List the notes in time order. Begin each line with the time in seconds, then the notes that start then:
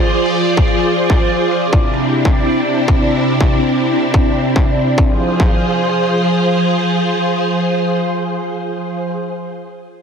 Already playing: F3 F4 G#4 C5 D5
0.26 closed hi-hat
0.36 closed hi-hat
0.57 kick
0.68 closed hi-hat
0.78 closed hi-hat
1.10 kick, closed hi-hat
1.20 closed hi-hat
1.52 closed hi-hat
1.62 C3 C4 D4 E4, closed hi-hat
1.73 kick
1.94 closed hi-hat
2.04 closed hi-hat
2.25 kick
2.36 closed hi-hat
2.41 closed hi-hat
2.46 closed hi-hat
2.51 closed hi-hat
2.78 closed hi-hat
2.81 closed hi-hat
2.85 kick, closed hi-hat
2.92 closed hi-hat
2.95 closed hi-hat
3.20 closed hi-hat
3.27 closed hi-hat
3.30 closed hi-hat
3.34 closed hi-hat
3.41 kick
3.62 closed hi-hat
3.69 closed hi-hat
3.72 closed hi-hat
3.76 closed hi-hat
4.04 closed hi-hat
4.14 kick
4.45 closed hi-hat
4.56 kick
4.87 closed hi-hat
4.98 F3 F4 G#4 C5, kick
5.40 kick